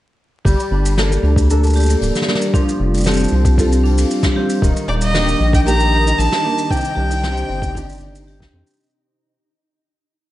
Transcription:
0.45 G1 G3 G4, kick, open hi-hat, shaker
0.60 shaker
0.69 G1 A#3 D4 A4
0.75 D5
0.85 open hi-hat, shaker
0.98 A#3 D4 A4, snare, open hi-hat, shaker
1.12 shaker
1.23 D2 D4, open hi-hat
1.36 kick, open hi-hat, shaker
1.50 A#3 D4 A4, shaker
1.64 shaker
1.67 shaker
1.70 shaker
1.73 G4, open hi-hat, shaker
1.77 shaker
1.80 shaker
1.83 shaker
1.86 open hi-hat, shaker
1.90 shaker
2.01 D1, open hi-hat, shaker
2.15 snare, shaker
2.22 snare
2.28 A#3, snare
2.35 snare
2.41 open hi-hat, shaker
2.53 F3 D4, kick, open hi-hat, shaker
2.59 C4
2.69 shaker
2.79 F1 F4
2.94 open hi-hat, shaker
2.98 shaker
3.01 shaker
3.04 C4 F4 G4, snare, open hi-hat, shaker
3.07 A4, shaker
3.11 shaker
3.14 shaker
3.17 shaker
3.20 shaker
3.24 shaker
3.28 C2, open hi-hat, shaker
3.40 F5
3.45 kick, open hi-hat, shaker
3.58 C4 F4 A4, kick, open hi-hat, shaker
3.72 shaker
3.84 D4, open hi-hat
3.98 open hi-hat, shaker
4.11 open hi-hat, shaker
4.23 kick, snare, shaker
4.36 C4 G4
4.50 open hi-hat, shaker
4.62 D#1 D#3 D#4, kick, open hi-hat, shaker
4.77 shaker
4.88 D#1 D#4 D5
5.01 D#3 D#5, open hi-hat, shaker
5.13 A#3 D4 D#4 G4 A#4, snare, open hi-hat, shaker
5.29 shaker
5.40 A#1, open hi-hat
5.48 D#6
5.53 G5, kick, open hi-hat, shaker
5.66 A#3 D#4 G4 A#5, open hi-hat, shaker
5.80 shaker
5.93 open hi-hat
6.06 open hi-hat, shaker
6.18 A#1 A5, open hi-hat, shaker
6.32 snare, shaker
6.44 A#3 D4
6.58 open hi-hat, shaker
6.70 C3 G5, kick, open hi-hat, shaker
6.77 shaker
6.81 shaker
6.85 C5, shaker
6.95 C2 D4 G4
7.11 open hi-hat, shaker
7.23 C4 D4 G4 D5, snare, open hi-hat, shaker
7.37 shaker
7.49 G1, open hi-hat
7.62 kick, open hi-hat, shaker
7.75 C4 D4 G4, kick, open hi-hat, shaker
7.89 shaker
7.92 shaker
7.95 shaker
7.97 shaker
8.00 G1, open hi-hat, shaker
8.15 open hi-hat, shaker
8.27 G4, open hi-hat
8.40 kick, snare, shaker
8.53 F2 C4
8.67 open hi-hat, shaker
8.70 shaker
8.74 shaker
8.77 shaker
8.80 shaker
8.83 shaker
8.86 shaker
8.90 shaker

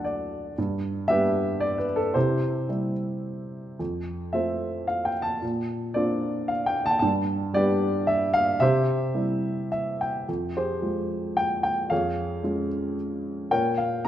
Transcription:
Already playing: D2 F#3 A3 D4 F#4 A4 D5 F#5 A5
0.05 D5
0.58 G2
1.08 G3 B3 D4 G4 B4 E5
1.60 D5
1.78 B4
1.96 A4
2.14 C3 E4 G4 C5
2.69 G3 C4 E4
3.79 F2
4.33 A3 C4 F4 A4 C5 E5
4.87 F5
5.05 G5
5.22 A5
5.42 A#2
5.94 A#3 C4 D4 F4 D5
6.48 F5
6.66 G5
6.86 A5
6.91 G5
6.99 G2 A5
7.54 G3 B3 D4 G4 B4 D5
8.07 E5
8.34 F5
8.60 C3 G4 C5 E5
9.15 G3 C4 E4
9.72 E5
10.01 G5
10.28 F2
10.57 G4 G#4 C5
10.82 F3 G#3 F4
11.37 G5
11.63 G5
11.90 F2 G#4 C#5 F5
12.43 G#3 C#4 F4
13.51 A#2 A#4 C#5 G5
13.78 F5
14.05 A#3 A#5

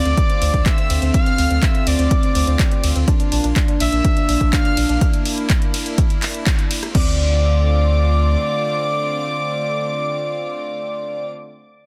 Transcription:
Already playing: D3 A3 C4 F4 D5 D6
0.05 D2 C4, closed hi-hat
0.17 C4, kick, closed hi-hat
0.30 C4, closed hi-hat
0.42 D2 C4, open hi-hat, ride
0.54 D2 C4, kick, closed hi-hat
0.66 C4 E5 E6, kick, clap, closed hi-hat
0.78 C4, closed hi-hat
0.90 D2 C4, open hi-hat, ride
1.02 D2 C4, closed hi-hat
1.14 C4 F5 F6, kick, closed hi-hat
1.26 C4, closed hi-hat
1.38 D2 C4, open hi-hat, ride
1.51 D2 C4, closed hi-hat
1.63 C4 E5 E6, kick, clap, closed hi-hat
1.75 C4, closed hi-hat
1.87 D2 C4 D5 D6, open hi-hat, ride
1.99 D2 C4, closed hi-hat
2.11 C4, kick, closed hi-hat
2.23 C4, closed hi-hat
2.35 D2 C4, open hi-hat, ride
2.47 D2 C4, closed hi-hat
2.59 C4, kick, clap, closed hi-hat
2.71 C4, closed hi-hat
2.84 D2 C4, open hi-hat, ride
2.96 D2 C4, closed hi-hat
3.08 A#3 D4, kick, closed hi-hat
3.20 D4, closed hi-hat
3.32 A#1 D4, open hi-hat, ride
3.44 A#1 D4, closed hi-hat
3.56 D4, kick, clap, closed hi-hat
3.68 D4, closed hi-hat
3.80 A#1 D4 E5 E6, open hi-hat, ride
3.92 A#1 D4, closed hi-hat
4.05 D4, kick, closed hi-hat
4.17 D4, closed hi-hat
4.29 A#1 D4, open hi-hat, ride
4.41 A#1 D4, kick, closed hi-hat
4.53 D4 F5 F6, kick, clap, closed hi-hat
4.65 D4, closed hi-hat
4.77 A#1 D4, open hi-hat, ride
4.89 A#1 D4, closed hi-hat
5.01 E4, kick, closed hi-hat
5.13 closed hi-hat
5.25 open hi-hat, ride
5.38 closed hi-hat
5.50 kick, clap, closed hi-hat
5.62 closed hi-hat
5.74 open hi-hat, ride
5.86 closed hi-hat
5.98 kick, closed hi-hat
6.10 closed hi-hat
6.22 clap, open hi-hat, ride
6.34 closed hi-hat
6.46 kick, clap, closed hi-hat
6.59 closed hi-hat
6.71 open hi-hat, ride
6.83 cross-stick, closed hi-hat
6.95 D2 D3 A3 C4 F4 D5 D6, kick, crash

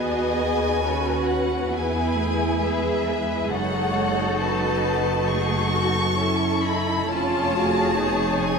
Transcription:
Already playing: D#2 B3 F#4 G#4 B4 D#5 G#5
0.33 F#4 G#4
0.79 C#4 F#4 A4 B4
1.26 B4 F#5
1.70 E2 B3 E4 G#4 G#5
2.16 A3
2.61 G#3 G#4 B4 E5
3.07 G#4 B4
3.50 F#1 D#4 F#4 A4 C#5 F#5
4.40 F#3 B4 A5
5.28 A3 F#4 G#4 A4 C#6
5.73 B3 F#4
6.17 C#4 E4 A4
6.64 D#4 E4 B5
7.09 F1 C#4 F4 G#4 C#5 A5
7.54 A3 F#4
7.99 B3 D#4 G#4 C#5
8.41 C#4 G#5

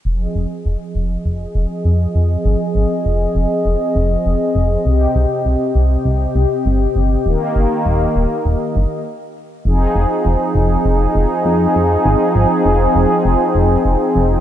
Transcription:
0.05 F1 F3 C4 G#4 D#5
0.35 F1
0.65 F1
0.95 F1
1.25 F1
1.55 F1
1.85 F2
2.15 F2
2.45 G#1
2.75 G#1
3.05 F1
3.35 F1
3.65 F1
3.95 F1
4.25 F1
4.55 F1
4.85 C2 C3 G4
5.15 C2
5.45 C2
5.75 C2
6.05 C2
6.35 C2
6.65 G1
6.95 G1
7.25 D#1 D#3 A#3
7.56 G1
7.85 D#1
8.15 D#1
8.45 D#1
8.75 G1
9.65 F1 F3 C4 D#4 G#4
9.95 F1
10.25 F1
10.55 F1
10.85 F1
11.15 F1
11.45 F2
11.75 F2
12.05 G#1
12.35 G#1
12.65 F1
12.95 F1
13.25 F1
13.55 F1
13.85 F1
14.15 F1

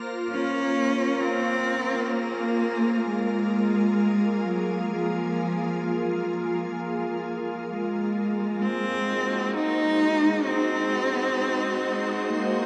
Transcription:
Already playing: A#3 F4 A#4 C5
0.30 C#4
1.21 C4
1.94 G#4
2.12 A#3
3.05 G#3
4.45 F#3
4.91 F3
7.70 G#3
8.62 G#3 C4
8.97 D#4 F#4
9.41 C5
9.53 D#4
10.46 C4
12.30 A#3

